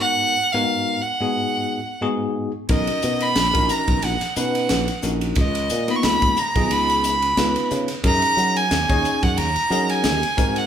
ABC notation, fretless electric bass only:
X:1
M:4/4
L:1/16
Q:"Swing 16ths" 1/4=90
K:Gb
V:1 name="Fretless electric bass" clef=bass
z16 | C,, z C,2 B,,, B,,, z C,, B,,, z C,2 B,,, z B,,,2 | D,,2 B,, z D,, D,, z C,, D,,4 D,, z D, z | G,, z G,2 E,, E,, z G,, E,, z G,2 E,, z A,,2 |]